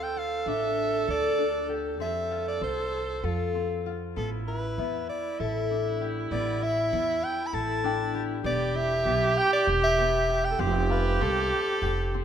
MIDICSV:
0, 0, Header, 1, 6, 480
1, 0, Start_track
1, 0, Tempo, 614125
1, 1562, Time_signature, 7, 3, 24, 8
1, 9571, End_track
2, 0, Start_track
2, 0, Title_t, "Celesta"
2, 0, Program_c, 0, 8
2, 3743, Note_on_c, 0, 76, 50
2, 5295, Note_off_c, 0, 76, 0
2, 6140, Note_on_c, 0, 79, 69
2, 6819, Note_off_c, 0, 79, 0
2, 8525, Note_on_c, 0, 77, 54
2, 9571, Note_off_c, 0, 77, 0
2, 9571, End_track
3, 0, Start_track
3, 0, Title_t, "Soprano saxophone"
3, 0, Program_c, 1, 64
3, 24, Note_on_c, 1, 79, 88
3, 142, Note_on_c, 1, 77, 89
3, 154, Note_off_c, 1, 79, 0
3, 378, Note_on_c, 1, 76, 91
3, 390, Note_off_c, 1, 77, 0
3, 849, Note_off_c, 1, 76, 0
3, 863, Note_on_c, 1, 74, 90
3, 1361, Note_off_c, 1, 74, 0
3, 1575, Note_on_c, 1, 76, 76
3, 1903, Note_off_c, 1, 76, 0
3, 1940, Note_on_c, 1, 74, 80
3, 2043, Note_off_c, 1, 74, 0
3, 2059, Note_on_c, 1, 72, 79
3, 2541, Note_on_c, 1, 65, 64
3, 2552, Note_off_c, 1, 72, 0
3, 3082, Note_off_c, 1, 65, 0
3, 3257, Note_on_c, 1, 69, 69
3, 3365, Note_off_c, 1, 69, 0
3, 3500, Note_on_c, 1, 71, 76
3, 3949, Note_off_c, 1, 71, 0
3, 3980, Note_on_c, 1, 74, 73
3, 4219, Note_on_c, 1, 76, 85
3, 4231, Note_off_c, 1, 74, 0
3, 4760, Note_off_c, 1, 76, 0
3, 4936, Note_on_c, 1, 74, 88
3, 5183, Note_on_c, 1, 76, 100
3, 5195, Note_off_c, 1, 74, 0
3, 5658, Note_on_c, 1, 79, 90
3, 5669, Note_off_c, 1, 76, 0
3, 5834, Note_on_c, 1, 83, 69
3, 5846, Note_off_c, 1, 79, 0
3, 5895, Note_on_c, 1, 81, 104
3, 5907, Note_off_c, 1, 83, 0
3, 6430, Note_off_c, 1, 81, 0
3, 6614, Note_on_c, 1, 74, 91
3, 6851, Note_on_c, 1, 76, 93
3, 6863, Note_off_c, 1, 74, 0
3, 7331, Note_on_c, 1, 79, 104
3, 7343, Note_off_c, 1, 76, 0
3, 7446, Note_off_c, 1, 79, 0
3, 7451, Note_on_c, 1, 74, 83
3, 7556, Note_off_c, 1, 74, 0
3, 7688, Note_on_c, 1, 76, 102
3, 8167, Note_on_c, 1, 79, 96
3, 8179, Note_off_c, 1, 76, 0
3, 8288, Note_on_c, 1, 67, 84
3, 8300, Note_off_c, 1, 79, 0
3, 8527, Note_on_c, 1, 71, 98
3, 8539, Note_off_c, 1, 67, 0
3, 8772, Note_on_c, 1, 69, 93
3, 8784, Note_off_c, 1, 71, 0
3, 9571, Note_off_c, 1, 69, 0
3, 9571, End_track
4, 0, Start_track
4, 0, Title_t, "Viola"
4, 0, Program_c, 2, 41
4, 0, Note_on_c, 2, 69, 106
4, 1563, Note_off_c, 2, 69, 0
4, 1571, Note_on_c, 2, 69, 97
4, 2988, Note_off_c, 2, 69, 0
4, 3257, Note_on_c, 2, 64, 72
4, 6576, Note_off_c, 2, 64, 0
4, 6606, Note_on_c, 2, 67, 113
4, 8194, Note_off_c, 2, 67, 0
4, 8218, Note_on_c, 2, 69, 61
4, 8280, Note_on_c, 2, 67, 99
4, 8292, Note_off_c, 2, 69, 0
4, 9571, Note_off_c, 2, 67, 0
4, 9571, End_track
5, 0, Start_track
5, 0, Title_t, "Harp"
5, 0, Program_c, 3, 46
5, 0, Note_on_c, 3, 60, 81
5, 0, Note_on_c, 3, 65, 60
5, 0, Note_on_c, 3, 69, 62
5, 122, Note_off_c, 3, 65, 0
5, 125, Note_on_c, 3, 65, 53
5, 366, Note_on_c, 3, 62, 67
5, 834, Note_off_c, 3, 69, 0
5, 838, Note_on_c, 3, 69, 60
5, 1076, Note_off_c, 3, 62, 0
5, 1079, Note_on_c, 3, 62, 59
5, 1321, Note_on_c, 3, 67, 55
5, 1560, Note_off_c, 3, 60, 0
5, 1563, Note_on_c, 3, 60, 66
5, 1801, Note_off_c, 3, 65, 0
5, 1805, Note_on_c, 3, 65, 54
5, 2041, Note_off_c, 3, 60, 0
5, 2044, Note_on_c, 3, 60, 62
5, 2527, Note_off_c, 3, 69, 0
5, 2530, Note_on_c, 3, 69, 64
5, 2770, Note_off_c, 3, 60, 0
5, 2773, Note_on_c, 3, 60, 55
5, 3014, Note_off_c, 3, 65, 0
5, 3017, Note_on_c, 3, 65, 60
5, 3161, Note_off_c, 3, 67, 0
5, 3253, Note_on_c, 3, 59, 70
5, 3267, Note_off_c, 3, 62, 0
5, 3300, Note_off_c, 3, 60, 0
5, 3497, Note_on_c, 3, 64, 57
5, 3544, Note_off_c, 3, 65, 0
5, 3736, Note_off_c, 3, 59, 0
5, 3739, Note_on_c, 3, 59, 65
5, 4217, Note_off_c, 3, 69, 0
5, 4220, Note_on_c, 3, 69, 56
5, 4459, Note_on_c, 3, 62, 55
5, 4699, Note_on_c, 3, 67, 58
5, 4933, Note_off_c, 3, 59, 0
5, 4936, Note_on_c, 3, 59, 74
5, 5172, Note_off_c, 3, 64, 0
5, 5175, Note_on_c, 3, 64, 63
5, 5414, Note_off_c, 3, 59, 0
5, 5417, Note_on_c, 3, 59, 67
5, 5884, Note_off_c, 3, 69, 0
5, 5887, Note_on_c, 3, 69, 61
5, 6121, Note_off_c, 3, 62, 0
5, 6124, Note_on_c, 3, 62, 66
5, 6363, Note_off_c, 3, 67, 0
5, 6366, Note_on_c, 3, 67, 67
5, 6596, Note_off_c, 3, 59, 0
5, 6599, Note_on_c, 3, 59, 83
5, 6835, Note_off_c, 3, 64, 0
5, 6838, Note_on_c, 3, 64, 59
5, 7077, Note_off_c, 3, 59, 0
5, 7080, Note_on_c, 3, 59, 72
5, 7557, Note_off_c, 3, 67, 0
5, 7560, Note_on_c, 3, 67, 71
5, 7603, Note_off_c, 3, 69, 0
5, 7800, Note_off_c, 3, 59, 0
5, 7803, Note_on_c, 3, 59, 70
5, 8038, Note_off_c, 3, 67, 0
5, 8041, Note_on_c, 3, 67, 70
5, 8279, Note_on_c, 3, 60, 96
5, 8312, Note_off_c, 3, 62, 0
5, 8326, Note_off_c, 3, 59, 0
5, 8520, Note_on_c, 3, 65, 68
5, 8567, Note_off_c, 3, 64, 0
5, 8754, Note_off_c, 3, 60, 0
5, 8757, Note_on_c, 3, 60, 80
5, 9239, Note_off_c, 3, 67, 0
5, 9242, Note_on_c, 3, 67, 83
5, 9486, Note_off_c, 3, 60, 0
5, 9489, Note_on_c, 3, 60, 70
5, 9571, Note_off_c, 3, 60, 0
5, 9571, Note_off_c, 3, 65, 0
5, 9571, Note_off_c, 3, 67, 0
5, 9571, End_track
6, 0, Start_track
6, 0, Title_t, "Upright bass"
6, 0, Program_c, 4, 32
6, 0, Note_on_c, 4, 38, 80
6, 338, Note_off_c, 4, 38, 0
6, 361, Note_on_c, 4, 33, 77
6, 814, Note_off_c, 4, 33, 0
6, 845, Note_on_c, 4, 38, 82
6, 1561, Note_off_c, 4, 38, 0
6, 1561, Note_on_c, 4, 41, 82
6, 2014, Note_off_c, 4, 41, 0
6, 2043, Note_on_c, 4, 36, 75
6, 2500, Note_off_c, 4, 36, 0
6, 2528, Note_on_c, 4, 41, 82
6, 3227, Note_off_c, 4, 41, 0
6, 3257, Note_on_c, 4, 33, 80
6, 3712, Note_off_c, 4, 33, 0
6, 3737, Note_on_c, 4, 40, 78
6, 3965, Note_off_c, 4, 40, 0
6, 4219, Note_on_c, 4, 33, 80
6, 4909, Note_off_c, 4, 33, 0
6, 4933, Note_on_c, 4, 33, 88
6, 5387, Note_off_c, 4, 33, 0
6, 5416, Note_on_c, 4, 40, 91
6, 5641, Note_off_c, 4, 40, 0
6, 5887, Note_on_c, 4, 33, 77
6, 6573, Note_off_c, 4, 33, 0
6, 6599, Note_on_c, 4, 28, 93
6, 7053, Note_off_c, 4, 28, 0
6, 7078, Note_on_c, 4, 35, 85
6, 7306, Note_off_c, 4, 35, 0
6, 7561, Note_on_c, 4, 28, 96
6, 8248, Note_off_c, 4, 28, 0
6, 8277, Note_on_c, 4, 29, 95
6, 8730, Note_off_c, 4, 29, 0
6, 8763, Note_on_c, 4, 36, 98
6, 8988, Note_off_c, 4, 36, 0
6, 9238, Note_on_c, 4, 29, 91
6, 9571, Note_off_c, 4, 29, 0
6, 9571, End_track
0, 0, End_of_file